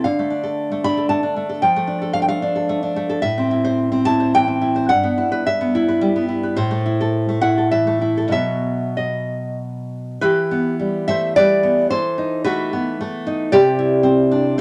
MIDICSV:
0, 0, Header, 1, 2, 480
1, 0, Start_track
1, 0, Tempo, 521739
1, 49, Time_signature, 3, 2, 24, 8
1, 1968, Tempo, 545455
1, 3408, Tempo, 561272
1, 6768, Tempo, 635593
1, 8208, Tempo, 597610
1, 9168, Tempo, 546946
1, 11088, Tempo, 527704
1, 12556, End_track
2, 0, Start_track
2, 0, Title_t, "Nylon-string guitar"
2, 0, Program_c, 0, 24
2, 38, Note_on_c, 0, 77, 79
2, 46, Note_on_c, 0, 50, 57
2, 175, Note_on_c, 0, 57, 43
2, 279, Note_on_c, 0, 62, 42
2, 400, Note_on_c, 0, 69, 53
2, 647, Note_off_c, 0, 57, 0
2, 658, Note_on_c, 0, 57, 47
2, 740, Note_off_c, 0, 77, 0
2, 766, Note_off_c, 0, 62, 0
2, 775, Note_on_c, 0, 62, 48
2, 776, Note_on_c, 0, 83, 92
2, 884, Note_off_c, 0, 69, 0
2, 895, Note_on_c, 0, 69, 46
2, 999, Note_off_c, 0, 83, 0
2, 1000, Note_off_c, 0, 57, 0
2, 1003, Note_on_c, 0, 81, 77
2, 1011, Note_on_c, 0, 57, 50
2, 1120, Note_off_c, 0, 62, 0
2, 1131, Note_on_c, 0, 62, 43
2, 1245, Note_off_c, 0, 57, 0
2, 1256, Note_on_c, 0, 57, 45
2, 1364, Note_off_c, 0, 69, 0
2, 1375, Note_on_c, 0, 69, 47
2, 1449, Note_off_c, 0, 50, 0
2, 1463, Note_off_c, 0, 81, 0
2, 1487, Note_off_c, 0, 62, 0
2, 1490, Note_off_c, 0, 57, 0
2, 1490, Note_off_c, 0, 69, 0
2, 1491, Note_on_c, 0, 53, 52
2, 1491, Note_on_c, 0, 79, 74
2, 1622, Note_on_c, 0, 57, 52
2, 1724, Note_on_c, 0, 62, 43
2, 1855, Note_on_c, 0, 69, 50
2, 1950, Note_off_c, 0, 79, 0
2, 1963, Note_on_c, 0, 77, 83
2, 2026, Note_off_c, 0, 77, 0
2, 2038, Note_on_c, 0, 79, 77
2, 2090, Note_off_c, 0, 57, 0
2, 2093, Note_off_c, 0, 79, 0
2, 2096, Note_on_c, 0, 77, 83
2, 2101, Note_on_c, 0, 57, 51
2, 2207, Note_off_c, 0, 62, 0
2, 2217, Note_on_c, 0, 62, 56
2, 2324, Note_off_c, 0, 69, 0
2, 2334, Note_on_c, 0, 69, 48
2, 2444, Note_off_c, 0, 57, 0
2, 2454, Note_on_c, 0, 57, 55
2, 2563, Note_off_c, 0, 62, 0
2, 2573, Note_on_c, 0, 62, 46
2, 2682, Note_off_c, 0, 57, 0
2, 2692, Note_on_c, 0, 57, 56
2, 2799, Note_off_c, 0, 69, 0
2, 2809, Note_on_c, 0, 69, 56
2, 2892, Note_off_c, 0, 53, 0
2, 2896, Note_off_c, 0, 77, 0
2, 2918, Note_on_c, 0, 76, 96
2, 2925, Note_off_c, 0, 57, 0
2, 2927, Note_off_c, 0, 62, 0
2, 2927, Note_off_c, 0, 69, 0
2, 2928, Note_on_c, 0, 45, 64
2, 3057, Note_on_c, 0, 60, 56
2, 3174, Note_on_c, 0, 64, 49
2, 3293, Note_on_c, 0, 72, 61
2, 3519, Note_off_c, 0, 60, 0
2, 3529, Note_on_c, 0, 60, 51
2, 3616, Note_off_c, 0, 76, 0
2, 3645, Note_off_c, 0, 64, 0
2, 3645, Note_on_c, 0, 81, 108
2, 3656, Note_on_c, 0, 64, 56
2, 3760, Note_off_c, 0, 72, 0
2, 3770, Note_on_c, 0, 72, 50
2, 3878, Note_off_c, 0, 81, 0
2, 3893, Note_on_c, 0, 52, 53
2, 3896, Note_on_c, 0, 79, 110
2, 3997, Note_off_c, 0, 60, 0
2, 4007, Note_on_c, 0, 60, 51
2, 4115, Note_off_c, 0, 64, 0
2, 4125, Note_on_c, 0, 64, 60
2, 4237, Note_off_c, 0, 72, 0
2, 4247, Note_on_c, 0, 72, 54
2, 4334, Note_off_c, 0, 45, 0
2, 4350, Note_off_c, 0, 79, 0
2, 4360, Note_on_c, 0, 78, 92
2, 4365, Note_off_c, 0, 60, 0
2, 4365, Note_off_c, 0, 64, 0
2, 4366, Note_off_c, 0, 52, 0
2, 4366, Note_off_c, 0, 72, 0
2, 4369, Note_on_c, 0, 43, 69
2, 4484, Note_on_c, 0, 59, 58
2, 4606, Note_on_c, 0, 64, 57
2, 4726, Note_on_c, 0, 71, 67
2, 4826, Note_off_c, 0, 78, 0
2, 4850, Note_off_c, 0, 64, 0
2, 4853, Note_on_c, 0, 76, 99
2, 4965, Note_off_c, 0, 59, 0
2, 4975, Note_on_c, 0, 59, 53
2, 5096, Note_on_c, 0, 64, 71
2, 5201, Note_off_c, 0, 71, 0
2, 5211, Note_on_c, 0, 71, 48
2, 5322, Note_on_c, 0, 55, 67
2, 5436, Note_off_c, 0, 59, 0
2, 5446, Note_on_c, 0, 59, 57
2, 5544, Note_off_c, 0, 64, 0
2, 5554, Note_on_c, 0, 64, 60
2, 5670, Note_off_c, 0, 71, 0
2, 5680, Note_on_c, 0, 71, 55
2, 5765, Note_off_c, 0, 43, 0
2, 5765, Note_off_c, 0, 76, 0
2, 5793, Note_on_c, 0, 72, 90
2, 5796, Note_off_c, 0, 55, 0
2, 5796, Note_off_c, 0, 64, 0
2, 5799, Note_off_c, 0, 71, 0
2, 5800, Note_on_c, 0, 45, 74
2, 5801, Note_off_c, 0, 59, 0
2, 5915, Note_on_c, 0, 57, 60
2, 6043, Note_on_c, 0, 64, 54
2, 6171, Note_on_c, 0, 69, 58
2, 6400, Note_off_c, 0, 57, 0
2, 6410, Note_on_c, 0, 57, 47
2, 6489, Note_off_c, 0, 72, 0
2, 6516, Note_off_c, 0, 64, 0
2, 6520, Note_on_c, 0, 78, 94
2, 6526, Note_on_c, 0, 64, 62
2, 6648, Note_off_c, 0, 69, 0
2, 6659, Note_on_c, 0, 69, 46
2, 6757, Note_off_c, 0, 78, 0
2, 6775, Note_on_c, 0, 76, 82
2, 6781, Note_on_c, 0, 52, 57
2, 6883, Note_off_c, 0, 57, 0
2, 6892, Note_on_c, 0, 57, 52
2, 6993, Note_off_c, 0, 64, 0
2, 7002, Note_on_c, 0, 64, 55
2, 7114, Note_off_c, 0, 69, 0
2, 7123, Note_on_c, 0, 69, 48
2, 7201, Note_off_c, 0, 52, 0
2, 7204, Note_on_c, 0, 47, 58
2, 7206, Note_off_c, 0, 45, 0
2, 7218, Note_on_c, 0, 54, 44
2, 7220, Note_off_c, 0, 76, 0
2, 7224, Note_off_c, 0, 57, 0
2, 7227, Note_on_c, 0, 59, 43
2, 7234, Note_on_c, 0, 76, 85
2, 7238, Note_off_c, 0, 64, 0
2, 7240, Note_off_c, 0, 69, 0
2, 7705, Note_off_c, 0, 76, 0
2, 7723, Note_on_c, 0, 75, 58
2, 8186, Note_off_c, 0, 75, 0
2, 8653, Note_off_c, 0, 47, 0
2, 8660, Note_off_c, 0, 54, 0
2, 8665, Note_off_c, 0, 59, 0
2, 8692, Note_on_c, 0, 71, 90
2, 8697, Note_on_c, 0, 52, 74
2, 8707, Note_on_c, 0, 67, 63
2, 8932, Note_on_c, 0, 59, 49
2, 9155, Note_off_c, 0, 67, 0
2, 9159, Note_on_c, 0, 55, 52
2, 9379, Note_off_c, 0, 71, 0
2, 9405, Note_on_c, 0, 76, 107
2, 9413, Note_on_c, 0, 57, 49
2, 9415, Note_on_c, 0, 72, 74
2, 9639, Note_off_c, 0, 72, 0
2, 9642, Note_off_c, 0, 76, 0
2, 9649, Note_off_c, 0, 55, 0
2, 9654, Note_on_c, 0, 74, 109
2, 9656, Note_off_c, 0, 59, 0
2, 9660, Note_on_c, 0, 55, 58
2, 9665, Note_on_c, 0, 71, 82
2, 9893, Note_on_c, 0, 59, 59
2, 10095, Note_off_c, 0, 52, 0
2, 10104, Note_off_c, 0, 71, 0
2, 10112, Note_off_c, 0, 74, 0
2, 10131, Note_off_c, 0, 59, 0
2, 10132, Note_off_c, 0, 57, 0
2, 10132, Note_on_c, 0, 72, 98
2, 10134, Note_off_c, 0, 55, 0
2, 10135, Note_on_c, 0, 52, 64
2, 10139, Note_on_c, 0, 69, 70
2, 10372, Note_on_c, 0, 63, 52
2, 10576, Note_off_c, 0, 69, 0
2, 10587, Note_off_c, 0, 72, 0
2, 10606, Note_on_c, 0, 71, 100
2, 10612, Note_on_c, 0, 57, 59
2, 10618, Note_on_c, 0, 66, 82
2, 10853, Note_off_c, 0, 66, 0
2, 10856, Note_on_c, 0, 59, 62
2, 11088, Note_off_c, 0, 57, 0
2, 11088, Note_off_c, 0, 63, 0
2, 11099, Note_on_c, 0, 57, 66
2, 11335, Note_on_c, 0, 63, 67
2, 11521, Note_off_c, 0, 71, 0
2, 11522, Note_off_c, 0, 52, 0
2, 11561, Note_off_c, 0, 59, 0
2, 11563, Note_off_c, 0, 63, 0
2, 11564, Note_off_c, 0, 57, 0
2, 11567, Note_on_c, 0, 74, 121
2, 11572, Note_on_c, 0, 48, 83
2, 11576, Note_on_c, 0, 67, 106
2, 11809, Note_on_c, 0, 64, 64
2, 12032, Note_on_c, 0, 60, 71
2, 12289, Note_on_c, 0, 62, 62
2, 12494, Note_off_c, 0, 74, 0
2, 12497, Note_off_c, 0, 67, 0
2, 12504, Note_off_c, 0, 48, 0
2, 12526, Note_off_c, 0, 60, 0
2, 12531, Note_off_c, 0, 62, 0
2, 12534, Note_off_c, 0, 64, 0
2, 12556, End_track
0, 0, End_of_file